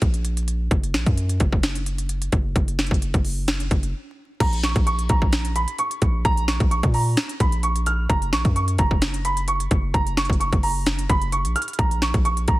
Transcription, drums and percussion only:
0.02 kick loud
0.02 closed hi-hat medium
0.14 closed hi-hat medium
0.25 closed hi-hat medium
0.37 closed hi-hat medium
0.48 closed hi-hat medium
0.71 kick loud
0.71 closed hi-hat medium
0.83 closed hi-hat medium
0.94 snare medium
0.94 closed hi-hat medium
1.06 kick loud
1.06 closed hi-hat medium
1.17 closed hi-hat medium
1.29 closed hi-hat medium
1.40 kick medium
1.40 closed hi-hat medium
1.52 kick loud
1.63 snare loud
1.63 closed hi-hat medium
1.75 closed hi-hat medium
1.86 closed hi-hat medium
1.98 closed hi-hat medium
2.09 closed hi-hat medium
2.22 closed hi-hat medium
2.32 kick loud
2.32 closed hi-hat medium
2.56 kick loud
2.56 closed hi-hat medium
2.68 closed hi-hat medium
2.79 snare medium
2.79 closed hi-hat soft
2.86 closed hi-hat medium
2.91 kick loud
2.91 closed hi-hat medium
3.02 closed hi-hat medium
3.14 kick loud
3.14 closed hi-hat medium
3.25 open hi-hat medium
3.48 snare loud
3.48 closed hi-hat medium
3.60 closed hi-hat medium
3.71 kick loud
3.71 closed hi-hat medium
3.83 closed hi-hat medium
4.40 kick loud
4.40 closed hi-hat medium
4.40 crash loud
4.53 closed hi-hat medium
4.63 snare medium
4.63 closed hi-hat medium
4.76 kick loud
4.76 closed hi-hat medium
4.87 closed hi-hat medium
4.99 closed hi-hat medium
5.09 kick loud
5.09 closed hi-hat medium
5.22 kick loud
5.33 snare loud
5.33 closed hi-hat medium
5.45 closed hi-hat medium
5.56 closed hi-hat medium
5.68 closed hi-hat medium
5.79 closed hi-hat medium
5.91 closed hi-hat medium
6.02 kick loud
6.02 closed hi-hat medium
6.25 kick loud
6.25 closed hi-hat medium
6.37 closed hi-hat medium
6.48 snare medium
6.48 closed hi-hat medium
6.60 kick loud
6.60 closed hi-hat medium
6.71 closed hi-hat medium
6.83 kick loud
6.83 closed hi-hat medium
6.94 open hi-hat medium
7.17 snare loud
7.17 closed hi-hat medium
7.29 closed hi-hat medium
7.40 kick loud
7.40 closed hi-hat medium
7.52 closed hi-hat medium
7.63 closed hi-hat medium
7.76 closed hi-hat medium
7.86 closed hi-hat medium
8.10 kick loud
8.10 closed hi-hat medium
8.22 closed hi-hat medium
8.33 snare medium
8.33 closed hi-hat medium
8.45 kick loud
8.45 closed hi-hat medium
8.56 closed hi-hat medium
8.68 closed hi-hat medium
8.78 kick loud
8.78 closed hi-hat medium
8.91 kick loud
9.02 snare loud
9.02 closed hi-hat medium
9.14 closed hi-hat medium
9.25 closed hi-hat medium
9.37 closed hi-hat medium
9.48 closed hi-hat medium
9.60 closed hi-hat medium
9.71 kick loud
9.71 closed hi-hat medium
9.94 kick loud
9.94 closed hi-hat medium
10.07 closed hi-hat medium
10.17 snare medium
10.17 closed hi-hat soft
10.25 closed hi-hat medium
10.30 kick loud
10.30 closed hi-hat medium
10.41 closed hi-hat medium
10.53 kick loud
10.53 closed hi-hat medium
10.63 open hi-hat medium
10.86 snare loud
10.86 closed hi-hat medium
10.99 closed hi-hat medium
11.10 kick loud
11.10 closed hi-hat medium
11.22 closed hi-hat medium
11.32 closed hi-hat medium
11.45 closed hi-hat medium
11.56 closed hi-hat medium
11.62 closed hi-hat medium
11.68 closed hi-hat medium
11.73 closed hi-hat soft
11.79 kick loud
11.79 closed hi-hat medium
11.91 closed hi-hat medium
12.02 snare medium
12.02 closed hi-hat medium
12.14 kick loud
12.14 closed hi-hat medium
12.25 closed hi-hat medium
12.37 closed hi-hat medium
12.48 kick loud
12.48 closed hi-hat medium

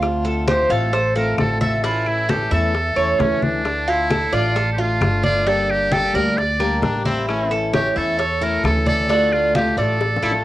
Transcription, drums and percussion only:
0.03 high bongo medium
0.03 high conga soft
0.03 claves medium
0.25 high conga soft
0.48 high bongo medium
0.48 high conga loud
0.48 claves medium
0.71 high conga soft
0.93 high bongo medium
0.93 high conga soft
1.16 high conga soft
1.38 high bongo medium
1.38 low bongo medium
1.38 high conga medium
1.38 claves medium
1.61 high conga medium
1.84 high bongo medium
1.84 high conga soft
2.06 high bongo soft
2.06 high conga soft
2.06 claves medium
2.29 high bongo medium
2.29 high conga loud
2.52 high bongo soft
2.75 high bongo medium
2.75 high conga soft
2.97 high conga soft
2.97 claves medium
3.20 high bongo medium
3.20 low bongo medium
3.20 high conga medium
3.42 high bongo soft
3.42 high conga medium
3.65 high bongo medium
3.65 high conga soft
3.65 claves medium
3.88 high conga soft
4.10 high bongo medium
4.10 high conga loud
4.10 claves medium
4.33 high conga soft
4.56 high bongo medium
4.56 high conga soft
4.78 high conga soft
5.01 high bongo medium
5.01 low bongo medium
5.01 high conga medium
5.01 claves medium
5.24 high conga medium
5.46 high bongo medium
5.46 high conga soft
5.69 high bongo soft
5.69 high conga soft
5.69 claves medium
5.91 high bongo medium
5.91 high conga loud
6.14 high bongo soft
6.14 high conga soft
6.37 high bongo medium
6.37 high conga soft
6.60 high conga soft
6.60 claves medium
6.82 high bongo medium
6.82 low bongo medium
6.82 high conga medium
7.05 high bongo soft
7.05 high conga medium
7.28 high bongo medium
7.28 high conga soft
7.28 claves medium
7.51 high conga soft
7.74 high bongo medium
7.74 high conga loud
7.74 claves medium
7.96 high conga soft
8.19 high bongo medium
8.19 high conga soft
8.42 high conga soft
8.64 high bongo medium
8.64 low bongo medium
8.64 high conga medium
8.64 claves medium
8.86 high conga medium
9.09 high bongo medium
9.09 high conga soft
9.32 high bongo soft
9.32 high conga soft
9.32 claves medium
9.55 high bongo medium
9.55 high conga loud
9.78 high bongo soft
9.78 high conga soft
10.01 high bongo medium
10.01 high conga soft
10.16 low bongo loud
10.23 high conga soft
10.23 claves medium
10.31 low bongo medium

